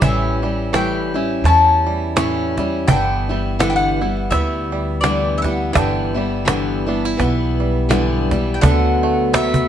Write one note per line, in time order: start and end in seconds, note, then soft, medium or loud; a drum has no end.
0.00 1.41 A1 medium
0.00 0.42 A2 medium
0.00 2.89 E3 medium
0.00 0.43 E3 medium
0.00 0.43 G3 medium
0.00 0.42 C#4 medium
0.00 1.14 E4 medium
0.00 0.41 E4 medium
0.00 0.76 E5 medium
0.00 cajon bass medium
0.42 1.85 G3 medium
0.42 0.72 G3 soft
0.42 0.72 C#4 soft
0.42 0.72 E4 soft
0.42 cajon slap soft
0.73 1.14 A2 medium
0.73 1.14 E3 medium
0.73 1.14 G3 medium
0.73 1.45 C#4 medium
0.73 1.14 C#4 medium
0.73 1.13 E4 medium
0.73 1.46 G5 medium
0.73 cajon slap medium
1.14 1.44 G3 soft
1.14 1.45 C#4 soft
1.14 1.45 E4 soft
1.14 2.97 E4 medium
1.31 cajon slap soft
1.44 2.84 E2 medium
1.44 2.16 E3 medium
1.44 2.17 G3 medium
1.44 2.16 C#4 medium
1.44 2.17 E4 medium
1.44 2.54 A5 medium
1.44 cajon bass medium
1.44 cajon slap soft
1.87 2.59 G3 medium
2.16 2.57 A2 medium
2.16 2.58 E3 medium
2.16 2.58 G3 medium
2.16 2.57 C#4 medium
2.16 2.97 C#4 medium
2.16 2.56 E4 medium
2.16 cajon slap medium
2.37 cajon slap soft
2.57 2.88 G3 soft
2.57 3.31 G3 soft
2.57 2.89 C#4 soft
2.57 2.88 E4 soft
2.57 cajon bass medium
2.57 cajon slap soft
2.88 4.28 G1 medium
2.88 3.29 G2 medium
2.88 3.29 D3 medium
2.88 3.31 D3 medium
2.88 3.29 E3 medium
2.88 3.29 G3 medium
2.88 3.28 B3 medium
2.88 3.28 E4 medium
2.88 3.56 G5 loud
2.88 cajon bass medium
3.29 3.58 E3 soft
3.29 3.58 G3 soft
3.29 4.71 G3 soft
3.29 3.59 B3 soft
3.29 3.59 E4 soft
3.59 4.01 G2 medium
3.59 4.01 D3 medium
3.59 4.01 E3 medium
3.59 4.01 G3 medium
3.59 4.00 B3 medium
3.59 4.33 B3 medium
3.59 4.00 E4 medium
3.59 3.68 F#5 medium
3.59 cajon slap medium
3.70 3.75 G5 medium
3.76 4.33 F#5 medium
4.01 4.30 E3 soft
4.01 4.31 G3 soft
4.01 4.31 B3 soft
4.01 4.32 E4 soft
4.01 5.84 E4 medium
4.17 cajon slap soft
4.31 5.71 D2 medium
4.31 5.02 E3 medium
4.31 5.03 G3 medium
4.31 5.03 B3 medium
4.31 5.04 B3 medium
4.31 5.03 E4 medium
4.31 5.00 E5 medium
4.31 cajon bass medium
4.31 cajon slap soft
4.72 5.44 G3 medium
5.01 5.44 G2 medium
5.01 5.44 D3 medium
5.01 5.44 E3 medium
5.01 5.44 G3 medium
5.01 5.83 B3 medium
5.01 5.43 B3 medium
5.01 5.43 E4 medium
5.01 5.33 D5 medium
5.01 cajon slap medium
5.25 cajon slap soft
5.38 5.42 E5 medium
5.42 5.72 E3 soft
5.42 5.73 G3 soft
5.42 5.84 G3 soft
5.42 5.73 B3 soft
5.42 5.73 E4 soft
5.42 5.72 F#5 medium
5.42 cajon bass medium
5.42 cajon slap soft
5.73 7.14 G1 medium
5.73 6.15 G2 medium
5.73 6.15 D3 medium
5.73 8.61 D3 medium
5.73 6.15 E3 medium
5.73 6.15 G3 medium
5.73 6.14 B3 medium
5.73 6.13 E4 medium
5.73 7.85 G5 medium
5.73 cajon bass loud
5.73 cajon slap soft
6.14 6.45 E3 soft
6.14 6.45 G3 soft
6.14 7.59 G3 soft
6.14 6.45 B3 soft
6.14 6.45 E4 medium
6.14 cajon slap soft
6.45 6.87 G2 medium
6.45 6.87 D3 medium
6.45 6.87 E3 medium
6.45 6.87 G3 medium
6.45 6.86 B3 medium
6.45 7.19 B3 medium
6.45 6.85 E4 medium
6.45 cajon slap medium
6.86 7.16 E3 soft
6.86 7.17 G3 soft
6.86 7.17 B3 soft
6.86 7.05 D4 medium
6.86 7.18 E4 soft
7.04 8.71 E4 soft
7.04 cajon slap soft
7.17 8.58 B1 medium
7.17 7.88 E3 medium
7.17 7.89 G3 medium
7.17 7.89 B3 medium
7.17 7.89 B3 soft
7.17 7.89 E4 medium
7.17 cajon bass medium
7.17 cajon slap soft
7.60 8.30 G3 soft
7.60 cajon slap soft
7.89 8.30 G2 medium
7.89 8.30 D3 medium
7.89 8.31 E3 medium
7.89 8.31 G3 medium
7.89 8.30 B3 medium
7.89 8.70 B3 medium
7.89 8.30 E4 medium
7.89 cajon slap medium
8.13 cajon slap soft
8.31 8.62 E3 soft
8.31 8.70 G3 medium
8.31 8.62 G3 soft
8.31 8.62 B3 soft
8.31 8.62 E4 soft
8.31 cajon bass medium
8.31 cajon slap soft
8.54 8.61 G5 medium
8.61 9.68 D2 medium
8.61 9.33 D3 medium
8.61 9.68 D3 medium
8.61 9.32 F#3 medium
8.61 9.33 A3 medium
8.61 9.34 B3 medium
8.61 9.34 F#4 medium
8.61 9.33 F#5 medium
8.61 cajon bass loud
9.03 9.68 A3 medium
9.33 9.68 F#3 medium
9.33 9.68 A3 medium
9.33 9.68 B3 medium
9.33 9.68 F#4 medium
9.33 9.68 E5 medium
9.33 cajon slap medium
9.54 cajon bass medium